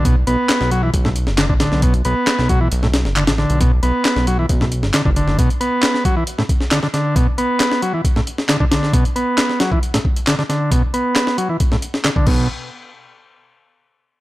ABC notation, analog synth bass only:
X:1
M:4/4
L:1/16
Q:1/4=135
K:Bm
V:1 name="Analog synth bass" clef=bass
B,,,2 B,,, z2 B,,,3 B,,,3 F,,,2 A,,,2 B,,,- | B,,,2 B,,, z2 B,,,3 B,,,3 F,,,2 A,,,2 B,,,- | B,,,2 B,,, z2 B,,,3 B,,,3 F,,, z F,,,2 F,,, | z16 |
z16 | z16 | z12 z2 B,,,2 | z16 |]